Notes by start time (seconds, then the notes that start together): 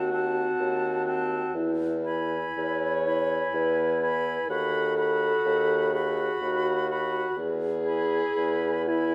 Already playing: D#2 C4 F#4
0.11 C4 F#5 A5
0.60 D#2
1.06 C4 F#5 A5
1.55 E2 E4
2.05 E4 G#5 B5
2.58 E2 C#5
3.06 E4 G#5 B5
3.54 E2 B4
4.02 E4 G#5 B5
4.49 D#2 F#4 A4 F#5 B5
4.97 F#4 F#5 B5
5.46 D#2
5.93 F#4 G#4 F#5 B5
6.42 D#2 F#4
6.89 F#4 F#5 B5
7.37 E2 G#4
7.85 E4 G#5 B5
8.36 E2
8.87 E4 G#5 B5